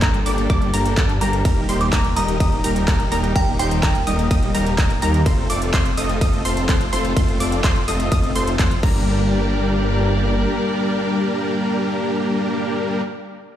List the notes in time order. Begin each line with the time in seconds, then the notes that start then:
Already playing: A#3 D4 A4
0.02 G1 G3 A#3 D4 G4 A#4 A#5, kick, clap, closed hi-hat
0.14 closed hi-hat
0.26 G1 G3 A#3 D4 G4 D5 D6, open hi-hat
0.38 closed hi-hat
0.50 G1 G3 A#3 G4 D5 D6, kick, closed hi-hat
0.62 closed hi-hat
0.74 G1 G3 A#3 D4 G4 A#4 A#5, open hi-hat
0.86 closed hi-hat
0.97 G2 G3 A#3 G4 A4 A5, kick, clap, closed hi-hat
1.09 closed hi-hat
1.21 G1 G3 A#3 D4 G4 A#4 A#5, open hi-hat
1.33 closed hi-hat
1.45 D#1 D#3 G3 A#3 D#4 G4 A#4 A#5, kick, closed hi-hat, ride
1.69 D#1 G3 A#3 D#4 G4 C5 C6, open hi-hat
1.81 D6, closed hi-hat
1.93 D#1 G3 A#3 D#4 G4 A#4 A#5, kick, clap, closed hi-hat, ride
2.05 closed hi-hat
2.16 D#1 G3 A#3 D#4 G4 D#5 A#5 D#6, open hi-hat
2.28 closed hi-hat
2.40 D#1 G3 A#3 G4 D#6, kick, closed hi-hat, ride
2.52 closed hi-hat
2.64 D#1 G3 A#3 D#4 G4 A#4 A#5, open hi-hat
2.76 closed hi-hat
2.88 D#1 G3 A#3 D#4 G4 A#4 A#5, kick, clap, closed hi-hat, ride
3.00 closed hi-hat
3.12 D#1 G3 A#3 D#4 G4 A#4 A#5, open hi-hat
3.24 closed hi-hat
3.36 D#1 G5 A#5, kick, closed hi-hat, ride
3.59 D#1 G3 A#3 D#4 G4 C5 G5 C6, open hi-hat
3.71 closed hi-hat
3.83 D#1 G3 A#3 D#4 G4 A#4 A#5, kick, clap, closed hi-hat, ride
3.95 closed hi-hat
4.07 D#1 G3 A#3 D#4 G4 D#5 D#6, open hi-hat
4.19 closed hi-hat
4.31 D#1 G3 A#3 D#4 G4 D#5 D#6, kick, closed hi-hat, ride
4.43 closed hi-hat
4.55 D#1 G3 A#3 D#4 G4 A#4 A#5, open hi-hat
4.67 closed hi-hat
4.78 D#1 G3 A#3 D#4 G4 A#5, kick, clap, closed hi-hat, ride
4.90 closed hi-hat
5.02 D#2 G3 A#3 D#4 G4 A#4 A#5, open hi-hat
5.14 closed hi-hat
5.26 F1 A3 C4 F4 A4 C6, kick, closed hi-hat, ride
5.50 F1 A3 C4 F4 A4 D5 D6, open hi-hat
5.62 closed hi-hat
5.74 F1 A3 C4 F4 C6, kick, clap, closed hi-hat, ride
5.86 closed hi-hat
5.97 F1 A3 C4 F4 A4 D#5 D#6, open hi-hat
6.09 closed hi-hat
6.21 F1 A3 C4 F4 A4 D#5 D#6, kick, closed hi-hat, ride
6.33 closed hi-hat
6.45 F1 A3 C4 F4 A4 C5 C6, open hi-hat
6.57 closed hi-hat
6.69 F1 A3 C4 F4 A4 C5 C6, kick, clap, closed hi-hat, ride
6.81 closed hi-hat
6.93 F1 A3 C4 F4 A4 C5 C6, open hi-hat
7.05 closed hi-hat
7.16 F1 A3 C4 F4 A4 C5 C6, kick, closed hi-hat, ride
7.28 closed hi-hat
7.40 F1 A3 C4 F4 A4 D5 D6, open hi-hat
7.52 closed hi-hat
7.64 F1 A3 C4 F4 A4 C5 C6, kick, clap, closed hi-hat, ride
7.76 closed hi-hat
7.88 F1 A3 C4 F4 A4 D#5 D#6, open hi-hat
8.00 closed hi-hat
8.12 F1 A3 C4 F4 A4 D#5 D#6, kick, closed hi-hat, ride
8.24 closed hi-hat
8.36 F1 A3 C4 F4 A4 C5 C6, open hi-hat
8.47 closed hi-hat
8.59 F2 A3 C4 F4 A4 C5 C6, kick, clap, closed hi-hat, ride
8.71 closed hi-hat
8.83 G1 G3 A#3 D4 G4 A#4 D5 A#5, kick, crash